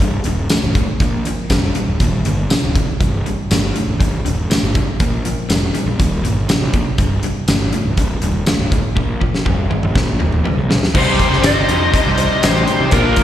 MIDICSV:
0, 0, Header, 1, 8, 480
1, 0, Start_track
1, 0, Tempo, 497100
1, 969, Time_signature, 4, 2, 24, 8
1, 12779, End_track
2, 0, Start_track
2, 0, Title_t, "Lead electric guitar"
2, 0, Program_c, 0, 29
2, 10599, Note_on_c, 0, 72, 101
2, 11032, Note_off_c, 0, 72, 0
2, 11070, Note_on_c, 0, 75, 93
2, 11506, Note_off_c, 0, 75, 0
2, 11552, Note_on_c, 0, 75, 99
2, 12021, Note_on_c, 0, 72, 93
2, 12032, Note_off_c, 0, 75, 0
2, 12481, Note_off_c, 0, 72, 0
2, 12485, Note_on_c, 0, 70, 90
2, 12779, Note_off_c, 0, 70, 0
2, 12779, End_track
3, 0, Start_track
3, 0, Title_t, "Lead electric guitar"
3, 0, Program_c, 1, 29
3, 10603, Note_on_c, 1, 67, 81
3, 11034, Note_off_c, 1, 67, 0
3, 11065, Note_on_c, 1, 72, 95
3, 11503, Note_off_c, 1, 72, 0
3, 11542, Note_on_c, 1, 72, 88
3, 11980, Note_off_c, 1, 72, 0
3, 11996, Note_on_c, 1, 67, 72
3, 12445, Note_off_c, 1, 67, 0
3, 12482, Note_on_c, 1, 65, 72
3, 12779, Note_off_c, 1, 65, 0
3, 12779, End_track
4, 0, Start_track
4, 0, Title_t, "Upright piano"
4, 0, Program_c, 2, 0
4, 10570, Note_on_c, 2, 63, 71
4, 10571, Note_on_c, 2, 67, 59
4, 10574, Note_on_c, 2, 72, 79
4, 11336, Note_off_c, 2, 63, 0
4, 11337, Note_off_c, 2, 67, 0
4, 11338, Note_off_c, 2, 72, 0
4, 11752, Note_on_c, 2, 63, 73
4, 11754, Note_on_c, 2, 67, 65
4, 11755, Note_on_c, 2, 72, 76
4, 12333, Note_off_c, 2, 63, 0
4, 12333, Note_off_c, 2, 67, 0
4, 12334, Note_off_c, 2, 72, 0
4, 12463, Note_on_c, 2, 70, 73
4, 12467, Note_on_c, 2, 65, 61
4, 12473, Note_on_c, 2, 62, 71
4, 12779, Note_off_c, 2, 62, 0
4, 12779, Note_off_c, 2, 65, 0
4, 12779, Note_off_c, 2, 70, 0
4, 12779, End_track
5, 0, Start_track
5, 0, Title_t, "String machine"
5, 0, Program_c, 3, 50
5, 10566, Note_on_c, 3, 72, 82
5, 10573, Note_on_c, 3, 55, 79
5, 10577, Note_on_c, 3, 63, 76
5, 12460, Note_off_c, 3, 72, 0
5, 12464, Note_off_c, 3, 55, 0
5, 12466, Note_off_c, 3, 63, 0
5, 12473, Note_on_c, 3, 65, 85
5, 12474, Note_on_c, 3, 58, 79
5, 12481, Note_on_c, 3, 74, 82
5, 12779, Note_off_c, 3, 58, 0
5, 12779, Note_off_c, 3, 65, 0
5, 12779, Note_off_c, 3, 74, 0
5, 12779, End_track
6, 0, Start_track
6, 0, Title_t, "Overdriven electric guitar"
6, 0, Program_c, 4, 29
6, 7, Note_on_c, 4, 36, 70
6, 16, Note_on_c, 4, 43, 77
6, 223, Note_off_c, 4, 36, 0
6, 227, Note_off_c, 4, 43, 0
6, 244, Note_on_c, 4, 36, 76
6, 247, Note_on_c, 4, 43, 79
6, 462, Note_off_c, 4, 36, 0
6, 463, Note_off_c, 4, 43, 0
6, 491, Note_on_c, 4, 36, 76
6, 494, Note_on_c, 4, 45, 78
6, 706, Note_off_c, 4, 36, 0
6, 707, Note_off_c, 4, 45, 0
6, 729, Note_on_c, 4, 36, 62
6, 736, Note_on_c, 4, 45, 60
6, 946, Note_off_c, 4, 36, 0
6, 949, Note_off_c, 4, 45, 0
6, 970, Note_on_c, 4, 46, 78
6, 975, Note_on_c, 4, 53, 97
6, 1187, Note_off_c, 4, 46, 0
6, 1189, Note_off_c, 4, 53, 0
6, 1224, Note_on_c, 4, 46, 63
6, 1230, Note_on_c, 4, 53, 77
6, 1434, Note_off_c, 4, 46, 0
6, 1438, Note_off_c, 4, 53, 0
6, 1450, Note_on_c, 4, 46, 77
6, 1458, Note_on_c, 4, 55, 89
6, 1668, Note_off_c, 4, 46, 0
6, 1672, Note_off_c, 4, 55, 0
6, 1692, Note_on_c, 4, 46, 68
6, 1693, Note_on_c, 4, 55, 71
6, 1910, Note_off_c, 4, 46, 0
6, 1910, Note_off_c, 4, 55, 0
6, 1945, Note_on_c, 4, 39, 69
6, 1951, Note_on_c, 4, 46, 68
6, 2156, Note_off_c, 4, 39, 0
6, 2159, Note_off_c, 4, 46, 0
6, 2180, Note_on_c, 4, 39, 66
6, 2184, Note_on_c, 4, 46, 76
6, 2394, Note_off_c, 4, 39, 0
6, 2397, Note_off_c, 4, 46, 0
6, 2411, Note_on_c, 4, 39, 72
6, 2422, Note_on_c, 4, 48, 74
6, 2631, Note_off_c, 4, 39, 0
6, 2636, Note_off_c, 4, 48, 0
6, 2661, Note_on_c, 4, 39, 62
6, 2665, Note_on_c, 4, 48, 69
6, 2876, Note_off_c, 4, 39, 0
6, 2878, Note_off_c, 4, 48, 0
6, 2901, Note_on_c, 4, 36, 76
6, 2901, Note_on_c, 4, 43, 78
6, 3116, Note_off_c, 4, 36, 0
6, 3116, Note_off_c, 4, 43, 0
6, 3146, Note_on_c, 4, 36, 66
6, 3150, Note_on_c, 4, 43, 69
6, 3359, Note_off_c, 4, 36, 0
6, 3361, Note_off_c, 4, 43, 0
6, 3387, Note_on_c, 4, 36, 80
6, 3397, Note_on_c, 4, 45, 91
6, 3600, Note_off_c, 4, 36, 0
6, 3605, Note_off_c, 4, 45, 0
6, 3620, Note_on_c, 4, 36, 70
6, 3629, Note_on_c, 4, 45, 74
6, 3837, Note_off_c, 4, 36, 0
6, 3842, Note_off_c, 4, 45, 0
6, 3860, Note_on_c, 4, 43, 73
6, 3861, Note_on_c, 4, 36, 64
6, 4077, Note_off_c, 4, 43, 0
6, 4078, Note_off_c, 4, 36, 0
6, 4103, Note_on_c, 4, 36, 69
6, 4105, Note_on_c, 4, 43, 73
6, 4319, Note_off_c, 4, 36, 0
6, 4320, Note_off_c, 4, 43, 0
6, 4347, Note_on_c, 4, 36, 73
6, 4352, Note_on_c, 4, 45, 81
6, 4561, Note_off_c, 4, 36, 0
6, 4564, Note_off_c, 4, 45, 0
6, 4593, Note_on_c, 4, 36, 59
6, 4601, Note_on_c, 4, 45, 68
6, 4804, Note_off_c, 4, 36, 0
6, 4808, Note_off_c, 4, 45, 0
6, 4830, Note_on_c, 4, 46, 78
6, 4835, Note_on_c, 4, 53, 76
6, 5043, Note_off_c, 4, 46, 0
6, 5045, Note_off_c, 4, 53, 0
6, 5071, Note_on_c, 4, 46, 61
6, 5072, Note_on_c, 4, 53, 72
6, 5284, Note_off_c, 4, 46, 0
6, 5284, Note_off_c, 4, 53, 0
6, 5298, Note_on_c, 4, 46, 79
6, 5308, Note_on_c, 4, 55, 89
6, 5517, Note_off_c, 4, 46, 0
6, 5522, Note_off_c, 4, 55, 0
6, 5540, Note_on_c, 4, 46, 69
6, 5548, Note_on_c, 4, 55, 76
6, 5758, Note_off_c, 4, 46, 0
6, 5762, Note_off_c, 4, 55, 0
6, 5782, Note_on_c, 4, 39, 72
6, 5788, Note_on_c, 4, 46, 86
6, 5999, Note_off_c, 4, 39, 0
6, 6003, Note_off_c, 4, 46, 0
6, 6021, Note_on_c, 4, 39, 75
6, 6026, Note_on_c, 4, 46, 75
6, 6239, Note_off_c, 4, 39, 0
6, 6241, Note_off_c, 4, 46, 0
6, 6270, Note_on_c, 4, 39, 78
6, 6272, Note_on_c, 4, 48, 77
6, 6483, Note_off_c, 4, 39, 0
6, 6484, Note_off_c, 4, 48, 0
6, 6510, Note_on_c, 4, 39, 63
6, 6513, Note_on_c, 4, 48, 69
6, 6723, Note_off_c, 4, 39, 0
6, 6725, Note_off_c, 4, 48, 0
6, 6741, Note_on_c, 4, 36, 79
6, 6746, Note_on_c, 4, 43, 81
6, 6959, Note_off_c, 4, 36, 0
6, 6961, Note_off_c, 4, 43, 0
6, 6988, Note_on_c, 4, 36, 70
6, 6995, Note_on_c, 4, 43, 80
6, 7202, Note_off_c, 4, 36, 0
6, 7205, Note_off_c, 4, 43, 0
6, 7219, Note_on_c, 4, 36, 70
6, 7226, Note_on_c, 4, 45, 80
6, 7438, Note_off_c, 4, 36, 0
6, 7441, Note_off_c, 4, 45, 0
6, 7461, Note_on_c, 4, 36, 59
6, 7470, Note_on_c, 4, 45, 73
6, 7678, Note_off_c, 4, 36, 0
6, 7683, Note_off_c, 4, 45, 0
6, 7707, Note_on_c, 4, 36, 73
6, 7710, Note_on_c, 4, 43, 85
6, 7921, Note_off_c, 4, 36, 0
6, 7922, Note_off_c, 4, 43, 0
6, 7936, Note_on_c, 4, 36, 71
6, 7946, Note_on_c, 4, 43, 84
6, 8155, Note_off_c, 4, 36, 0
6, 8160, Note_off_c, 4, 43, 0
6, 8186, Note_on_c, 4, 36, 76
6, 8186, Note_on_c, 4, 45, 83
6, 8400, Note_off_c, 4, 36, 0
6, 8400, Note_off_c, 4, 45, 0
6, 8416, Note_on_c, 4, 36, 67
6, 8422, Note_on_c, 4, 45, 71
6, 8635, Note_off_c, 4, 36, 0
6, 8638, Note_off_c, 4, 45, 0
6, 8647, Note_on_c, 4, 46, 65
6, 8648, Note_on_c, 4, 53, 85
6, 8870, Note_off_c, 4, 46, 0
6, 8871, Note_off_c, 4, 53, 0
6, 8883, Note_on_c, 4, 46, 67
6, 8889, Note_on_c, 4, 53, 77
6, 9108, Note_off_c, 4, 46, 0
6, 9111, Note_off_c, 4, 53, 0
6, 9130, Note_on_c, 4, 46, 72
6, 9130, Note_on_c, 4, 55, 81
6, 9351, Note_off_c, 4, 46, 0
6, 9351, Note_off_c, 4, 55, 0
6, 9367, Note_on_c, 4, 46, 70
6, 9374, Note_on_c, 4, 55, 79
6, 9589, Note_off_c, 4, 46, 0
6, 9592, Note_off_c, 4, 55, 0
6, 9611, Note_on_c, 4, 46, 70
6, 9617, Note_on_c, 4, 53, 84
6, 9830, Note_off_c, 4, 46, 0
6, 9833, Note_off_c, 4, 53, 0
6, 9843, Note_on_c, 4, 46, 79
6, 9849, Note_on_c, 4, 53, 77
6, 10066, Note_off_c, 4, 46, 0
6, 10069, Note_off_c, 4, 53, 0
6, 10088, Note_on_c, 4, 46, 67
6, 10093, Note_on_c, 4, 55, 92
6, 10308, Note_off_c, 4, 46, 0
6, 10310, Note_off_c, 4, 55, 0
6, 10325, Note_on_c, 4, 46, 62
6, 10333, Note_on_c, 4, 55, 62
6, 10546, Note_off_c, 4, 46, 0
6, 10549, Note_off_c, 4, 55, 0
6, 10567, Note_on_c, 4, 36, 97
6, 10575, Note_on_c, 4, 43, 90
6, 10586, Note_on_c, 4, 48, 99
6, 10591, Note_on_c, 4, 55, 99
6, 10594, Note_on_c, 4, 63, 102
6, 11273, Note_off_c, 4, 36, 0
6, 11277, Note_off_c, 4, 43, 0
6, 11279, Note_off_c, 4, 63, 0
6, 11282, Note_off_c, 4, 48, 0
6, 11285, Note_off_c, 4, 55, 0
6, 11290, Note_on_c, 4, 63, 80
6, 11297, Note_on_c, 4, 55, 81
6, 11303, Note_on_c, 4, 48, 79
6, 11311, Note_on_c, 4, 43, 65
6, 11318, Note_on_c, 4, 36, 67
6, 12469, Note_off_c, 4, 63, 0
6, 12473, Note_off_c, 4, 55, 0
6, 12475, Note_off_c, 4, 48, 0
6, 12476, Note_off_c, 4, 36, 0
6, 12479, Note_off_c, 4, 43, 0
6, 12480, Note_on_c, 4, 46, 97
6, 12486, Note_on_c, 4, 53, 104
6, 12491, Note_on_c, 4, 58, 93
6, 12496, Note_on_c, 4, 62, 88
6, 12499, Note_on_c, 4, 65, 103
6, 12507, Note_on_c, 4, 70, 99
6, 12779, Note_off_c, 4, 46, 0
6, 12779, Note_off_c, 4, 53, 0
6, 12779, Note_off_c, 4, 58, 0
6, 12779, Note_off_c, 4, 62, 0
6, 12779, Note_off_c, 4, 65, 0
6, 12779, Note_off_c, 4, 70, 0
6, 12779, End_track
7, 0, Start_track
7, 0, Title_t, "Picked electric bass"
7, 0, Program_c, 5, 34
7, 0, Note_on_c, 5, 24, 80
7, 177, Note_off_c, 5, 24, 0
7, 243, Note_on_c, 5, 27, 87
7, 441, Note_off_c, 5, 27, 0
7, 615, Note_on_c, 5, 24, 73
7, 809, Note_off_c, 5, 24, 0
7, 978, Note_on_c, 5, 34, 90
7, 1171, Note_off_c, 5, 34, 0
7, 1453, Note_on_c, 5, 29, 81
7, 1650, Note_off_c, 5, 29, 0
7, 1808, Note_on_c, 5, 26, 74
7, 1909, Note_off_c, 5, 26, 0
7, 1937, Note_on_c, 5, 27, 97
7, 2133, Note_off_c, 5, 27, 0
7, 2179, Note_on_c, 5, 31, 80
7, 2374, Note_off_c, 5, 31, 0
7, 2549, Note_on_c, 5, 26, 70
7, 2741, Note_off_c, 5, 26, 0
7, 2906, Note_on_c, 5, 24, 83
7, 3099, Note_off_c, 5, 24, 0
7, 3390, Note_on_c, 5, 31, 81
7, 3582, Note_off_c, 5, 31, 0
7, 3748, Note_on_c, 5, 24, 73
7, 4040, Note_off_c, 5, 24, 0
7, 4112, Note_on_c, 5, 27, 84
7, 4305, Note_off_c, 5, 27, 0
7, 4472, Note_on_c, 5, 31, 76
7, 4665, Note_off_c, 5, 31, 0
7, 4834, Note_on_c, 5, 34, 92
7, 5026, Note_off_c, 5, 34, 0
7, 5309, Note_on_c, 5, 29, 78
7, 5503, Note_off_c, 5, 29, 0
7, 5660, Note_on_c, 5, 34, 76
7, 5760, Note_off_c, 5, 34, 0
7, 5793, Note_on_c, 5, 27, 100
7, 5986, Note_off_c, 5, 27, 0
7, 6035, Note_on_c, 5, 31, 85
7, 6227, Note_off_c, 5, 31, 0
7, 6382, Note_on_c, 5, 34, 72
7, 6579, Note_off_c, 5, 34, 0
7, 6754, Note_on_c, 5, 24, 85
7, 6946, Note_off_c, 5, 24, 0
7, 7226, Note_on_c, 5, 31, 75
7, 7421, Note_off_c, 5, 31, 0
7, 7578, Note_on_c, 5, 24, 80
7, 7874, Note_off_c, 5, 24, 0
7, 7937, Note_on_c, 5, 27, 84
7, 8135, Note_off_c, 5, 27, 0
7, 8296, Note_on_c, 5, 24, 78
7, 8494, Note_off_c, 5, 24, 0
7, 8665, Note_on_c, 5, 34, 90
7, 8860, Note_off_c, 5, 34, 0
7, 9137, Note_on_c, 5, 29, 79
7, 9334, Note_off_c, 5, 29, 0
7, 9504, Note_on_c, 5, 34, 74
7, 9795, Note_off_c, 5, 34, 0
7, 9866, Note_on_c, 5, 26, 82
7, 10058, Note_off_c, 5, 26, 0
7, 10212, Note_on_c, 5, 35, 79
7, 10409, Note_off_c, 5, 35, 0
7, 10574, Note_on_c, 5, 36, 97
7, 10929, Note_on_c, 5, 31, 83
7, 10943, Note_off_c, 5, 36, 0
7, 11223, Note_off_c, 5, 31, 0
7, 11291, Note_on_c, 5, 41, 95
7, 11486, Note_off_c, 5, 41, 0
7, 11651, Note_on_c, 5, 36, 89
7, 11845, Note_off_c, 5, 36, 0
7, 12010, Note_on_c, 5, 33, 90
7, 12204, Note_off_c, 5, 33, 0
7, 12365, Note_on_c, 5, 48, 90
7, 12462, Note_off_c, 5, 48, 0
7, 12483, Note_on_c, 5, 34, 101
7, 12678, Note_off_c, 5, 34, 0
7, 12722, Note_on_c, 5, 34, 85
7, 12779, Note_off_c, 5, 34, 0
7, 12779, End_track
8, 0, Start_track
8, 0, Title_t, "Drums"
8, 0, Note_on_c, 9, 36, 85
8, 94, Note_off_c, 9, 36, 0
8, 231, Note_on_c, 9, 42, 55
8, 328, Note_off_c, 9, 42, 0
8, 478, Note_on_c, 9, 42, 84
8, 478, Note_on_c, 9, 54, 106
8, 486, Note_on_c, 9, 38, 105
8, 574, Note_off_c, 9, 42, 0
8, 574, Note_off_c, 9, 54, 0
8, 582, Note_off_c, 9, 38, 0
8, 724, Note_on_c, 9, 42, 64
8, 726, Note_on_c, 9, 36, 84
8, 821, Note_off_c, 9, 42, 0
8, 822, Note_off_c, 9, 36, 0
8, 966, Note_on_c, 9, 42, 76
8, 968, Note_on_c, 9, 36, 100
8, 1063, Note_off_c, 9, 42, 0
8, 1064, Note_off_c, 9, 36, 0
8, 1210, Note_on_c, 9, 42, 63
8, 1307, Note_off_c, 9, 42, 0
8, 1446, Note_on_c, 9, 42, 80
8, 1446, Note_on_c, 9, 54, 96
8, 1449, Note_on_c, 9, 36, 75
8, 1454, Note_on_c, 9, 38, 108
8, 1543, Note_off_c, 9, 42, 0
8, 1543, Note_off_c, 9, 54, 0
8, 1546, Note_off_c, 9, 36, 0
8, 1551, Note_off_c, 9, 38, 0
8, 1688, Note_on_c, 9, 42, 58
8, 1784, Note_off_c, 9, 42, 0
8, 1931, Note_on_c, 9, 42, 83
8, 1933, Note_on_c, 9, 36, 75
8, 2028, Note_off_c, 9, 42, 0
8, 2030, Note_off_c, 9, 36, 0
8, 2173, Note_on_c, 9, 42, 62
8, 2270, Note_off_c, 9, 42, 0
8, 2417, Note_on_c, 9, 42, 80
8, 2417, Note_on_c, 9, 54, 105
8, 2425, Note_on_c, 9, 38, 100
8, 2514, Note_off_c, 9, 42, 0
8, 2514, Note_off_c, 9, 54, 0
8, 2522, Note_off_c, 9, 38, 0
8, 2660, Note_on_c, 9, 36, 80
8, 2662, Note_on_c, 9, 42, 61
8, 2756, Note_off_c, 9, 36, 0
8, 2758, Note_off_c, 9, 42, 0
8, 2902, Note_on_c, 9, 36, 95
8, 2904, Note_on_c, 9, 42, 75
8, 2998, Note_off_c, 9, 36, 0
8, 3000, Note_off_c, 9, 42, 0
8, 3150, Note_on_c, 9, 42, 52
8, 3246, Note_off_c, 9, 42, 0
8, 3387, Note_on_c, 9, 42, 75
8, 3387, Note_on_c, 9, 54, 99
8, 3394, Note_on_c, 9, 38, 98
8, 3483, Note_off_c, 9, 42, 0
8, 3483, Note_off_c, 9, 54, 0
8, 3491, Note_off_c, 9, 38, 0
8, 3627, Note_on_c, 9, 42, 55
8, 3724, Note_off_c, 9, 42, 0
8, 3867, Note_on_c, 9, 36, 76
8, 3867, Note_on_c, 9, 42, 73
8, 3964, Note_off_c, 9, 36, 0
8, 3964, Note_off_c, 9, 42, 0
8, 4111, Note_on_c, 9, 42, 56
8, 4207, Note_off_c, 9, 42, 0
8, 4353, Note_on_c, 9, 42, 75
8, 4353, Note_on_c, 9, 54, 99
8, 4361, Note_on_c, 9, 38, 100
8, 4450, Note_off_c, 9, 42, 0
8, 4450, Note_off_c, 9, 54, 0
8, 4457, Note_off_c, 9, 38, 0
8, 4587, Note_on_c, 9, 42, 55
8, 4589, Note_on_c, 9, 36, 84
8, 4684, Note_off_c, 9, 42, 0
8, 4685, Note_off_c, 9, 36, 0
8, 4826, Note_on_c, 9, 42, 72
8, 4830, Note_on_c, 9, 36, 97
8, 4923, Note_off_c, 9, 42, 0
8, 4926, Note_off_c, 9, 36, 0
8, 5070, Note_on_c, 9, 42, 56
8, 5166, Note_off_c, 9, 42, 0
8, 5308, Note_on_c, 9, 42, 76
8, 5308, Note_on_c, 9, 54, 100
8, 5316, Note_on_c, 9, 38, 97
8, 5405, Note_off_c, 9, 42, 0
8, 5405, Note_off_c, 9, 54, 0
8, 5412, Note_off_c, 9, 38, 0
8, 5549, Note_on_c, 9, 42, 57
8, 5645, Note_off_c, 9, 42, 0
8, 5789, Note_on_c, 9, 42, 82
8, 5791, Note_on_c, 9, 36, 80
8, 5885, Note_off_c, 9, 42, 0
8, 5887, Note_off_c, 9, 36, 0
8, 6032, Note_on_c, 9, 42, 59
8, 6129, Note_off_c, 9, 42, 0
8, 6267, Note_on_c, 9, 42, 83
8, 6267, Note_on_c, 9, 54, 102
8, 6275, Note_on_c, 9, 38, 112
8, 6364, Note_off_c, 9, 42, 0
8, 6364, Note_off_c, 9, 54, 0
8, 6371, Note_off_c, 9, 38, 0
8, 6502, Note_on_c, 9, 42, 61
8, 6505, Note_on_c, 9, 36, 83
8, 6599, Note_off_c, 9, 42, 0
8, 6602, Note_off_c, 9, 36, 0
8, 6741, Note_on_c, 9, 42, 81
8, 6744, Note_on_c, 9, 36, 94
8, 6838, Note_off_c, 9, 42, 0
8, 6841, Note_off_c, 9, 36, 0
8, 6979, Note_on_c, 9, 42, 55
8, 7076, Note_off_c, 9, 42, 0
8, 7220, Note_on_c, 9, 42, 81
8, 7220, Note_on_c, 9, 54, 111
8, 7228, Note_on_c, 9, 38, 105
8, 7317, Note_off_c, 9, 42, 0
8, 7317, Note_off_c, 9, 54, 0
8, 7324, Note_off_c, 9, 38, 0
8, 7460, Note_on_c, 9, 42, 55
8, 7557, Note_off_c, 9, 42, 0
8, 7699, Note_on_c, 9, 42, 76
8, 7701, Note_on_c, 9, 36, 76
8, 7796, Note_off_c, 9, 42, 0
8, 7798, Note_off_c, 9, 36, 0
8, 7935, Note_on_c, 9, 42, 57
8, 8031, Note_off_c, 9, 42, 0
8, 8173, Note_on_c, 9, 42, 74
8, 8173, Note_on_c, 9, 54, 99
8, 8181, Note_on_c, 9, 38, 102
8, 8270, Note_off_c, 9, 42, 0
8, 8270, Note_off_c, 9, 54, 0
8, 8277, Note_off_c, 9, 38, 0
8, 8419, Note_on_c, 9, 36, 79
8, 8420, Note_on_c, 9, 42, 56
8, 8516, Note_off_c, 9, 36, 0
8, 8516, Note_off_c, 9, 42, 0
8, 8658, Note_on_c, 9, 36, 100
8, 8754, Note_off_c, 9, 36, 0
8, 8898, Note_on_c, 9, 36, 54
8, 8994, Note_off_c, 9, 36, 0
8, 9024, Note_on_c, 9, 38, 52
8, 9120, Note_off_c, 9, 38, 0
8, 9135, Note_on_c, 9, 36, 72
8, 9135, Note_on_c, 9, 47, 61
8, 9232, Note_off_c, 9, 36, 0
8, 9232, Note_off_c, 9, 47, 0
8, 9374, Note_on_c, 9, 47, 58
8, 9470, Note_off_c, 9, 47, 0
8, 9493, Note_on_c, 9, 47, 62
8, 9589, Note_off_c, 9, 47, 0
8, 9613, Note_on_c, 9, 36, 84
8, 9621, Note_on_c, 9, 38, 71
8, 9709, Note_off_c, 9, 36, 0
8, 9717, Note_off_c, 9, 38, 0
8, 9850, Note_on_c, 9, 45, 74
8, 9947, Note_off_c, 9, 45, 0
8, 9969, Note_on_c, 9, 45, 60
8, 10066, Note_off_c, 9, 45, 0
8, 10095, Note_on_c, 9, 43, 80
8, 10191, Note_off_c, 9, 43, 0
8, 10338, Note_on_c, 9, 38, 90
8, 10435, Note_off_c, 9, 38, 0
8, 10460, Note_on_c, 9, 38, 70
8, 10556, Note_off_c, 9, 38, 0
8, 10571, Note_on_c, 9, 36, 109
8, 10573, Note_on_c, 9, 49, 117
8, 10668, Note_off_c, 9, 36, 0
8, 10670, Note_off_c, 9, 49, 0
8, 10809, Note_on_c, 9, 36, 75
8, 10813, Note_on_c, 9, 42, 80
8, 10906, Note_off_c, 9, 36, 0
8, 10909, Note_off_c, 9, 42, 0
8, 10937, Note_on_c, 9, 38, 31
8, 11033, Note_off_c, 9, 38, 0
8, 11042, Note_on_c, 9, 42, 102
8, 11042, Note_on_c, 9, 54, 118
8, 11050, Note_on_c, 9, 38, 122
8, 11138, Note_off_c, 9, 42, 0
8, 11138, Note_off_c, 9, 54, 0
8, 11146, Note_off_c, 9, 38, 0
8, 11285, Note_on_c, 9, 42, 64
8, 11382, Note_off_c, 9, 42, 0
8, 11525, Note_on_c, 9, 36, 89
8, 11527, Note_on_c, 9, 42, 94
8, 11622, Note_off_c, 9, 36, 0
8, 11624, Note_off_c, 9, 42, 0
8, 11757, Note_on_c, 9, 42, 75
8, 11854, Note_off_c, 9, 42, 0
8, 12002, Note_on_c, 9, 42, 103
8, 12002, Note_on_c, 9, 54, 120
8, 12009, Note_on_c, 9, 38, 106
8, 12098, Note_off_c, 9, 42, 0
8, 12098, Note_off_c, 9, 54, 0
8, 12106, Note_off_c, 9, 38, 0
8, 12239, Note_on_c, 9, 42, 74
8, 12336, Note_off_c, 9, 42, 0
8, 12469, Note_on_c, 9, 42, 97
8, 12479, Note_on_c, 9, 36, 112
8, 12566, Note_off_c, 9, 42, 0
8, 12575, Note_off_c, 9, 36, 0
8, 12711, Note_on_c, 9, 42, 68
8, 12718, Note_on_c, 9, 36, 79
8, 12779, Note_off_c, 9, 36, 0
8, 12779, Note_off_c, 9, 42, 0
8, 12779, End_track
0, 0, End_of_file